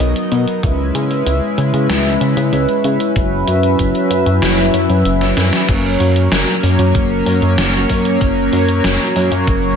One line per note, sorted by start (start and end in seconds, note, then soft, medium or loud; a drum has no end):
0.00 0.14 B1 loud
0.00 0.59 F#3 medium
0.00 0.59 B3 medium
0.00 0.59 D#4 medium
0.00 0.59 A#4 medium
0.00 0.59 D#5 medium
0.00 closed hi-hat medium
0.16 closed hi-hat soft
0.32 0.46 B2 medium
0.32 closed hi-hat medium
0.48 closed hi-hat soft
0.63 0.91 C#2 loud
0.63 3.13 G#3 medium
0.63 5.65 C#4 medium
0.63 3.13 E4 medium
0.63 5.65 B4 medium
0.63 3.13 E5 medium
0.63 kick loud
0.63 closed hi-hat medium
0.95 1.23 C#3 medium
0.95 closed hi-hat medium
1.11 closed hi-hat medium
1.26 1.40 C#2 medium
1.26 closed hi-hat medium
1.58 1.72 C#3 loud
1.58 closed hi-hat medium
1.74 1.88 C#3 medium
1.74 closed hi-hat soft
1.89 2.18 C#2 medium
1.89 snare loud
1.89 closed hi-hat medium
2.21 2.35 C#3 medium
2.21 closed hi-hat medium
2.37 2.51 C#3 medium
2.37 closed hi-hat medium
2.53 2.67 C#2 loud
2.53 closed hi-hat medium
2.69 closed hi-hat soft
2.84 2.98 C#3 medium
2.84 closed hi-hat medium
3.00 closed hi-hat soft
3.16 3.44 F#1 loud
3.16 5.66 F#3 medium
3.16 5.66 E4 medium
3.16 5.66 E5 medium
3.16 kick loud
3.16 closed hi-hat medium
3.48 3.76 F#2 loud
3.48 closed hi-hat medium
3.63 closed hi-hat medium
3.79 3.93 F#1 medium
3.79 kick medium
3.79 closed hi-hat medium
3.95 closed hi-hat soft
4.10 4.25 F#2 loud
4.10 closed hi-hat medium
4.26 4.40 F#2 medium
4.26 closed hi-hat medium
4.42 4.70 F#1 medium
4.42 snare loud
4.42 closed hi-hat medium
4.58 closed hi-hat soft
4.74 4.88 F#2 medium
4.74 closed hi-hat medium
4.90 5.04 F#2 medium
4.90 closed hi-hat medium
5.05 5.34 F#1 medium
5.05 closed hi-hat medium
5.21 snare medium
5.21 closed hi-hat soft
5.37 5.51 F#2 medium
5.37 snare medium
5.37 closed hi-hat medium
5.53 snare medium
5.53 closed hi-hat medium
5.68 5.97 F#1 loud
5.68 9.76 F#3 medium
5.68 9.76 A#3 medium
5.68 9.76 C#4 medium
5.68 9.76 A#4 medium
5.68 9.76 C#5 medium
5.68 kick loud
5.68 closed hi-hat medium
5.68 crash loud
6.00 6.28 F#2 loud
6.00 open hi-hat medium
6.16 closed hi-hat medium
6.32 6.46 F#1 medium
6.32 snare loud
6.32 closed hi-hat medium
6.63 6.77 F#2 loud
6.63 open hi-hat medium
6.79 6.93 F#2 medium
6.79 closed hi-hat medium
6.95 7.23 F#1 medium
6.95 kick loud
6.95 closed hi-hat medium
7.26 7.41 F#2 medium
7.26 open hi-hat medium
7.42 7.56 F#2 medium
7.42 closed hi-hat medium
7.58 7.86 F#1 medium
7.58 snare loud
7.58 closed hi-hat medium
7.74 closed hi-hat soft
7.90 8.18 F#2 medium
7.90 kick medium
7.90 open hi-hat medium
8.05 closed hi-hat medium
8.21 8.49 F#1 loud
8.21 kick loud
8.21 closed hi-hat medium
8.53 8.81 F#2 medium
8.53 open hi-hat medium
8.69 closed hi-hat medium
8.84 8.98 F#1 medium
8.84 snare loud
8.84 closed hi-hat medium
9.16 9.30 F#2 loud
9.16 open hi-hat medium
9.31 9.46 F#2 medium
9.31 closed hi-hat medium
9.47 9.76 F#1 medium
9.47 kick loud
9.47 closed hi-hat medium